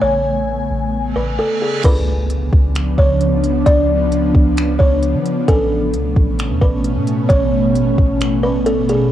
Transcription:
Already playing: ambient pad C#3 A3 B3 G#5
0.02 808-style bass A1, kalimba C#5
0.71 808-style bass A1
0.93 reverse cymbal
1.16 808-style bass A1, kalimba B4
1.39 kalimba A4
1.62 kalimba G#4
1.84 808-style bass C#2, ambient pad C#3 F3 B3 D4, marimba D4 F4 B5, kalimba B4, kick, closed hi-hat, crash, impact
2.30 closed hi-hat
2.53 808-style bass C#2, kick
2.75 finger snap, closed hi-hat
2.98 808-style bass C#2, kalimba C#5, kick
3.21 closed hi-hat
3.44 closed hi-hat
3.66 808-style bass C#2, kalimba D5, kick, closed hi-hat
4.12 closed hi-hat
4.35 808-style bass C#2, kick
4.57 finger snap, closed hi-hat
4.79 808-style bass C#2, kalimba C#5, kick
5.03 closed hi-hat
5.14 808-style bass F3
5.25 closed hi-hat
5.48 808-style bass A1, ambient pad B2 A3 B3 C#4, marimba C#4 B4 G#5, kalimba A4, kick, closed hi-hat
5.94 808-style bass C#2, closed hi-hat
6.16 808-style bass A1, kick
6.39 finger snap, closed hi-hat
6.50 808-style bass E2
6.61 808-style bass A1, kalimba B4, kick
6.84 closed hi-hat
6.96 808-style bass A2
7.07 closed hi-hat
7.29 808-style bass A1, kalimba C#5, kick, closed hi-hat
7.75 closed hi-hat
7.98 808-style bass A1, kick
8.21 finger snap, closed hi-hat
8.43 kalimba B4
8.66 kalimba A4, closed hi-hat
8.89 kalimba G#4, closed hi-hat

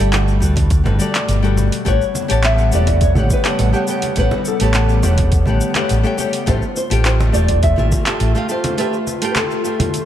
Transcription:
Already playing: analog synth pad B2 G3 A3, nylon-string guitar G3
0.00 fingered electric bass G1, nylon-string guitar F#4 A4 E5
0.13 nylon-string guitar F#5, clap, open hi-hat, muted conga, cabasa
0.28 cabasa
0.40 fingered electric bass D2, nylon-string guitar G3 F#4 A4 B4, kick, cabasa
0.56 kick, open hi-hat, muted conga, low conga, cabasa
0.70 kick, open hi-hat, cabasa
0.84 fingered electric bass G1, nylon-string guitar G3 F#4 A4 B4, muted conga, high conga, cabasa
0.99 nylon-string guitar G3 F#4 A4 D5, cabasa
1.15 clap, open hi-hat, cabasa
1.28 fingered electric bass G1, open hi-hat, muted conga, cabasa
1.42 nylon-string guitar G3 F#4 A4 B4, cabasa
1.57 muted conga, cabasa
1.72 open hi-hat, cabasa
1.85 fingered electric bass A1, analog synth pad C#3 G3 B3 F#5, nylon-string guitar A3 G4 B4 C#5 F#5, kick, open hi-hat, muted conga, cabasa
2.02 cabasa
2.15 muted conga, cabasa
2.28 fingered electric bass A1, nylon-string guitar A3 G4 B4 C#5 A5, open hi-hat, cabasa
2.44 nylon-string guitar E5, clap, open hi-hat, cabasa
2.58 muted conga, cabasa
2.72 fingered electric bass E1, nylon-string guitar A3 G4 B4 C#5 D5 F#5, cabasa
2.87 kick, open hi-hat, muted conga, low conga, cabasa
3.01 nylon-string guitar C#5, kick, open hi-hat, cabasa
3.15 fingered electric bass A1, nylon-string guitar A3 G4 B4 C#5 F#5, high conga, cabasa
3.30 nylon-string guitar B4, kick, muted conga, cabasa
3.44 nylon-string guitar A3 G4 B4 C#5 F#5, clap, open hi-hat, cabasa
3.59 fingered electric bass A1, open hi-hat, muted conga, cabasa
3.73 nylon-string guitar A3 G4 B4 C#5 G5, cabasa
3.87 nylon-string guitar A3 G4 B4 C#5 G5, cabasa
4.02 open hi-hat, muted conga, cabasa
4.16 fingered electric bass A1, nylon-string guitar A3 G4 B4 C#5 F#5, kick, open hi-hat, cabasa
4.31 muted conga, cabasa
4.45 nylon-string guitar A4, cabasa
4.60 fingered electric bass A1, nylon-string guitar A3 G4 B4 C#5 A5, open hi-hat, cabasa
4.74 clap, open hi-hat, muted conga, cabasa
4.89 cabasa
5.03 fingered electric bass E1, nylon-string guitar A3 G4 B4 C#5 F#5, muted conga, cabasa
5.18 kick, open hi-hat, low conga, cabasa
5.32 kick, open hi-hat, cabasa
5.46 fingered electric bass A1, nylon-string guitar A3 G4 B4 C#5 F#5, muted conga, high conga, cabasa
5.61 cabasa
5.75 nylon-string guitar A3 G4 B4 C#5 F#5, clap, open hi-hat, muted conga, cabasa
5.89 fingered electric bass A1, open hi-hat, cabasa
6.03 nylon-string guitar A3 G4 B4 C#5 G5, cabasa
6.17 nylon-string guitar A3 G4 B4 C#5 G5, muted conga, cabasa
6.33 open hi-hat, cabasa
6.46 fingered electric bass A1, nylon-string guitar A3 F4 G4 C5 E5, analog synth pad A3 F4, kick, open hi-hat, muted conga, cabasa
6.62 cabasa
6.76 nylon-string guitar C5, cabasa
6.90 fingered electric bass A1, nylon-string guitar A3 F4 G4 G5, open hi-hat, muted conga, cabasa
7.05 nylon-string guitar C5, clap, open hi-hat, cabasa
7.20 muted conga, cabasa
7.32 fingered electric bass E1, nylon-string guitar A3 F4 G4 D5 E5, cabasa
7.48 kick, open hi-hat, low conga, cabasa
7.63 nylon-string guitar E5, kick, open hi-hat, muted conga, cabasa
7.76 fingered electric bass A1, nylon-string guitar A3 F4 G4 E5, high conga, cabasa
7.92 kick, muted conga, cabasa
8.05 nylon-string guitar A3 F4 G4 E5, clap, open hi-hat, cabasa
8.20 fingered electric bass A1, open hi-hat, cabasa
8.35 nylon-string guitar A3 F4 G4 F5, muted conga, cabasa
8.49 nylon-string guitar A3 F4 G4 C5 F5, cabasa
8.64 open hi-hat, muted conga, cabasa
8.78 nylon-string guitar A3 F4 G4 B4 E5, open hi-hat, cabasa
8.93 cabasa
9.07 muted conga, cabasa
9.22 nylon-string guitar A3 F4 G4 G5, open hi-hat, cabasa
9.30 nylon-string guitar B4
9.36 nylon-string guitar A4, clap, open hi-hat, muted conga, cabasa
9.51 cabasa
9.64 nylon-string guitar A3 F4 G4 E5, cabasa
9.80 open hi-hat, muted conga, high conga, low conga, cabasa
9.94 open hi-hat, cabasa

